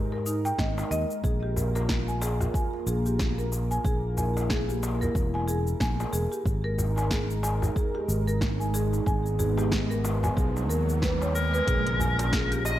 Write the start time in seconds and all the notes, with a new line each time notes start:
Already playing: G#2 G#3 D#4 A#4
0.12 A#4, darbuka ka
0.26 D#4, shaker
0.45 G5, shaker
0.59 G#1 D#5, kick, snare, shaker
0.78 darbuka tek, shaker
0.91 D#2 D#5, shaker
1.11 shaker
1.24 A#1 A#3 F4 G#4, kick, shaker
1.43 G4
1.56 darbuka dum, shaker
1.75 A#4, darbuka ka, darbuka tek, shaker
1.89 kick, snare, shaker
2.08 G#5, shaker
2.22 G#4, darbuka tek, shaker
2.40 darbuka dum, shaker
2.54 G#5, kick, shaker
2.73 darbuka tek
2.87 A#1 G#4, darbuka ka, shaker
3.06 G4, shaker
3.19 kick, snare, shaker
3.38 A#4, shaker
3.52 darbuka ka, shaker
3.71 G#5, darbuka tek, shaker
3.85 A#1 E4 G#4, kick, shaker
4.17 G#5, darbuka dum, shaker
4.37 darbuka ka, darbuka tek, shaker
4.50 G#4, kick, snare, shaker
4.69 G4, shaker
4.83 darbuka tek, shaker
5.01 A#4, darbuka dum, shaker
5.15 E1, kick, darbuka ka, shaker
5.34 G#5, darbuka ka
5.48 G#4, shaker
5.67 shaker
5.80 A#1 G#5, kick, snare, shaker
6.00 darbuka tek, shaker
6.13 E1 G#4, shaker
6.32 G4, shaker
6.45 G#1 G#3 D#4 A#4, kick, riser, shaker
6.64 A#4
6.78 darbuka dum, shaker
6.96 G#5, darbuka ka, darbuka tek, shaker
7.11 G#4, kick, snare, shaker
7.30 shaker
7.43 G#5, darbuka tek, shaker
7.62 darbuka dum, shaker
7.76 G#4, kick, shaker
7.94 G4, darbuka tek
8.08 G#1, darbuka ka, shaker
8.28 A#4, shaker
8.41 kick, snare, shaker
8.60 G#5, shaker
8.74 G#4, darbuka ka, shaker
8.93 darbuka tek, shaker
9.06 G#1 B3 G#5, kick, shaker
9.26 shaker
9.39 G#4, darbuka dum, shaker
9.58 G4, darbuka ka, darbuka tek, shaker
9.72 kick, snare, shaker
9.90 A#4, shaker
10.05 darbuka tek, shaker
10.23 G#5, darbuka dum, shaker
10.37 B1 G#4, kick, darbuka ka, shaker
10.57 darbuka ka, shaker
10.69 D#2 A#4, shaker
10.89 shaker
11.02 B4, kick, snare, shaker
11.21 C#5, darbuka tek, shaker
11.35 A#4, shaker
11.54 B4, shaker
11.67 A#1 C#4 F4 G#4 A#5, kick, closed hi-hat, impact, shaker
11.87 closed hi-hat
12.00 G#5, darbuka dum, shaker
12.19 closed hi-hat, darbuka ka, darbuka tek, shaker
12.33 G#4, kick, snare, closed hi-hat, shaker
12.52 G4, closed hi-hat, shaker
12.65 D#5, darbuka tek, shaker